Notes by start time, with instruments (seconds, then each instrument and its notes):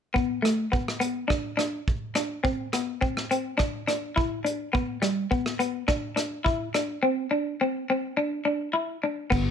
0.14 clean electric guitar B3, kick
0.42 clean electric guitar A3, cross-stick, closed hi-hat
0.72 clean electric guitar B3, kick
0.88 cross-stick
1.00 clean electric guitar B3, closed hi-hat
1.28 clean electric guitar D4, kick, cross-stick
1.57 clean electric guitar D4, cross-stick, closed hi-hat
1.88 kick
2.15 clean electric guitar D4, cross-stick, closed hi-hat
2.44 clean electric guitar C4, kick
2.73 clean electric guitar B3, cross-stick, closed hi-hat
3.01 clean electric guitar C4, kick
3.17 cross-stick
3.31 clean electric guitar C4, closed hi-hat
3.58 clean electric guitar D4, kick, cross-stick
3.88 clean electric guitar D4, cross-stick, closed hi-hat
4.16 clean electric guitar E4, kick
4.45 clean electric guitar D4, closed hi-hat
4.73 clean electric guitar B3, kick
5.02 clean electric guitar G3, cross-stick, closed hi-hat
5.31 clean electric guitar B3, kick
5.46 cross-stick
5.59 clean electric guitar B3, closed hi-hat
5.88 clean electric guitar D4, kick, cross-stick
6.16 clean electric guitar D4, cross-stick, closed hi-hat
6.45 clean electric guitar E4, kick
6.74 clean electric guitar D4, cross-stick, closed hi-hat
7.03 clean electric guitar C4
7.31 clean electric guitar D4
7.61 clean electric guitar C4
7.90 clean electric guitar C4
8.17 clean electric guitar D4
8.45 clean electric guitar D4
8.73 clean electric guitar E4
9.03 clean electric guitar D4
9.30 fingered electric bass G1, clean electric guitar B3, kick, crash